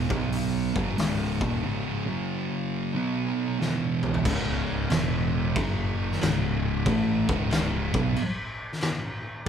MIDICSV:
0, 0, Header, 1, 4, 480
1, 0, Start_track
1, 0, Key_signature, 4, "minor"
1, 0, Tempo, 653595
1, 1203, Time_signature, 4, 2, 24, 8
1, 6965, End_track
2, 0, Start_track
2, 0, Title_t, "Distorted electric guitar"
2, 0, Program_c, 0, 30
2, 65, Note_on_c, 0, 47, 100
2, 70, Note_on_c, 0, 54, 100
2, 73, Note_on_c, 0, 59, 100
2, 542, Note_off_c, 0, 47, 0
2, 545, Note_off_c, 0, 54, 0
2, 547, Note_off_c, 0, 59, 0
2, 548, Note_on_c, 0, 42, 87
2, 553, Note_on_c, 0, 49, 94
2, 558, Note_on_c, 0, 54, 109
2, 712, Note_off_c, 0, 42, 0
2, 714, Note_off_c, 0, 49, 0
2, 716, Note_on_c, 0, 37, 91
2, 717, Note_off_c, 0, 54, 0
2, 719, Note_on_c, 0, 44, 82
2, 725, Note_on_c, 0, 49, 97
2, 1027, Note_off_c, 0, 37, 0
2, 1028, Note_off_c, 0, 44, 0
2, 1031, Note_off_c, 0, 49, 0
2, 1035, Note_on_c, 0, 39, 96
2, 1039, Note_on_c, 0, 46, 94
2, 1042, Note_on_c, 0, 51, 98
2, 1196, Note_off_c, 0, 39, 0
2, 1198, Note_off_c, 0, 46, 0
2, 1200, Note_off_c, 0, 51, 0
2, 1200, Note_on_c, 0, 37, 89
2, 1205, Note_on_c, 0, 44, 96
2, 1207, Note_on_c, 0, 49, 104
2, 1509, Note_off_c, 0, 37, 0
2, 1511, Note_off_c, 0, 44, 0
2, 1512, Note_off_c, 0, 49, 0
2, 1518, Note_on_c, 0, 42, 86
2, 1520, Note_on_c, 0, 49, 97
2, 1524, Note_on_c, 0, 54, 108
2, 2157, Note_off_c, 0, 54, 0
2, 2158, Note_off_c, 0, 42, 0
2, 2160, Note_off_c, 0, 49, 0
2, 2162, Note_on_c, 0, 47, 89
2, 2166, Note_on_c, 0, 54, 103
2, 2171, Note_on_c, 0, 59, 93
2, 2638, Note_off_c, 0, 47, 0
2, 2640, Note_off_c, 0, 54, 0
2, 2641, Note_on_c, 0, 40, 89
2, 2643, Note_off_c, 0, 59, 0
2, 2646, Note_on_c, 0, 47, 89
2, 2649, Note_on_c, 0, 52, 103
2, 3117, Note_off_c, 0, 40, 0
2, 3120, Note_off_c, 0, 47, 0
2, 3122, Note_off_c, 0, 52, 0
2, 3125, Note_on_c, 0, 37, 101
2, 3129, Note_on_c, 0, 44, 91
2, 3134, Note_on_c, 0, 49, 104
2, 3597, Note_off_c, 0, 37, 0
2, 3600, Note_on_c, 0, 40, 97
2, 3602, Note_off_c, 0, 44, 0
2, 3604, Note_off_c, 0, 49, 0
2, 3606, Note_on_c, 0, 47, 100
2, 3609, Note_on_c, 0, 52, 114
2, 4076, Note_off_c, 0, 40, 0
2, 4080, Note_off_c, 0, 47, 0
2, 4081, Note_off_c, 0, 52, 0
2, 4082, Note_on_c, 0, 42, 99
2, 4085, Note_on_c, 0, 49, 101
2, 4089, Note_on_c, 0, 54, 112
2, 4555, Note_off_c, 0, 42, 0
2, 4558, Note_on_c, 0, 37, 94
2, 4559, Note_off_c, 0, 49, 0
2, 4560, Note_off_c, 0, 54, 0
2, 4563, Note_on_c, 0, 44, 104
2, 4568, Note_on_c, 0, 49, 116
2, 5035, Note_off_c, 0, 37, 0
2, 5037, Note_off_c, 0, 44, 0
2, 5039, Note_on_c, 0, 45, 91
2, 5040, Note_off_c, 0, 49, 0
2, 5044, Note_on_c, 0, 52, 98
2, 5049, Note_on_c, 0, 57, 105
2, 5347, Note_off_c, 0, 45, 0
2, 5349, Note_off_c, 0, 52, 0
2, 5351, Note_off_c, 0, 57, 0
2, 5351, Note_on_c, 0, 37, 85
2, 5355, Note_on_c, 0, 44, 108
2, 5358, Note_on_c, 0, 49, 106
2, 5824, Note_off_c, 0, 37, 0
2, 5826, Note_off_c, 0, 44, 0
2, 5827, Note_off_c, 0, 49, 0
2, 5827, Note_on_c, 0, 47, 93
2, 5831, Note_on_c, 0, 54, 100
2, 5835, Note_on_c, 0, 59, 110
2, 5990, Note_off_c, 0, 47, 0
2, 5992, Note_off_c, 0, 54, 0
2, 5994, Note_off_c, 0, 59, 0
2, 6965, End_track
3, 0, Start_track
3, 0, Title_t, "Picked electric bass"
3, 0, Program_c, 1, 34
3, 72, Note_on_c, 1, 35, 93
3, 526, Note_off_c, 1, 35, 0
3, 554, Note_on_c, 1, 30, 94
3, 708, Note_off_c, 1, 30, 0
3, 723, Note_on_c, 1, 25, 96
3, 1017, Note_off_c, 1, 25, 0
3, 1031, Note_on_c, 1, 27, 94
3, 1187, Note_off_c, 1, 27, 0
3, 3122, Note_on_c, 1, 25, 87
3, 3573, Note_off_c, 1, 25, 0
3, 3600, Note_on_c, 1, 28, 100
3, 4052, Note_off_c, 1, 28, 0
3, 4081, Note_on_c, 1, 30, 96
3, 4532, Note_off_c, 1, 30, 0
3, 4566, Note_on_c, 1, 25, 96
3, 5014, Note_off_c, 1, 25, 0
3, 5036, Note_on_c, 1, 33, 88
3, 5332, Note_off_c, 1, 33, 0
3, 5350, Note_on_c, 1, 25, 97
3, 5804, Note_off_c, 1, 25, 0
3, 5830, Note_on_c, 1, 35, 102
3, 5985, Note_off_c, 1, 35, 0
3, 6965, End_track
4, 0, Start_track
4, 0, Title_t, "Drums"
4, 75, Note_on_c, 9, 36, 106
4, 148, Note_off_c, 9, 36, 0
4, 237, Note_on_c, 9, 46, 55
4, 311, Note_off_c, 9, 46, 0
4, 556, Note_on_c, 9, 36, 97
4, 629, Note_off_c, 9, 36, 0
4, 719, Note_on_c, 9, 46, 53
4, 731, Note_on_c, 9, 38, 107
4, 792, Note_off_c, 9, 46, 0
4, 805, Note_off_c, 9, 38, 0
4, 1036, Note_on_c, 9, 36, 96
4, 1109, Note_off_c, 9, 36, 0
4, 2656, Note_on_c, 9, 38, 60
4, 2729, Note_off_c, 9, 38, 0
4, 2959, Note_on_c, 9, 45, 79
4, 3032, Note_off_c, 9, 45, 0
4, 3043, Note_on_c, 9, 43, 84
4, 3116, Note_off_c, 9, 43, 0
4, 3123, Note_on_c, 9, 36, 105
4, 3124, Note_on_c, 9, 49, 114
4, 3124, Note_on_c, 9, 57, 61
4, 3197, Note_off_c, 9, 36, 0
4, 3197, Note_off_c, 9, 49, 0
4, 3197, Note_off_c, 9, 57, 0
4, 3599, Note_on_c, 9, 57, 54
4, 3611, Note_on_c, 9, 38, 107
4, 3672, Note_off_c, 9, 57, 0
4, 3685, Note_off_c, 9, 38, 0
4, 4083, Note_on_c, 9, 36, 113
4, 4083, Note_on_c, 9, 57, 64
4, 4156, Note_off_c, 9, 36, 0
4, 4156, Note_off_c, 9, 57, 0
4, 4496, Note_on_c, 9, 38, 33
4, 4563, Note_on_c, 9, 57, 61
4, 4569, Note_off_c, 9, 38, 0
4, 4576, Note_on_c, 9, 38, 113
4, 4637, Note_off_c, 9, 57, 0
4, 4649, Note_off_c, 9, 38, 0
4, 5038, Note_on_c, 9, 36, 105
4, 5039, Note_on_c, 9, 57, 58
4, 5112, Note_off_c, 9, 36, 0
4, 5113, Note_off_c, 9, 57, 0
4, 5353, Note_on_c, 9, 36, 118
4, 5426, Note_off_c, 9, 36, 0
4, 5515, Note_on_c, 9, 57, 61
4, 5527, Note_on_c, 9, 38, 113
4, 5588, Note_off_c, 9, 57, 0
4, 5601, Note_off_c, 9, 38, 0
4, 5832, Note_on_c, 9, 36, 118
4, 5905, Note_off_c, 9, 36, 0
4, 5995, Note_on_c, 9, 57, 66
4, 6069, Note_off_c, 9, 57, 0
4, 6407, Note_on_c, 9, 38, 31
4, 6470, Note_on_c, 9, 57, 64
4, 6481, Note_off_c, 9, 38, 0
4, 6483, Note_on_c, 9, 38, 116
4, 6544, Note_off_c, 9, 57, 0
4, 6556, Note_off_c, 9, 38, 0
4, 6965, End_track
0, 0, End_of_file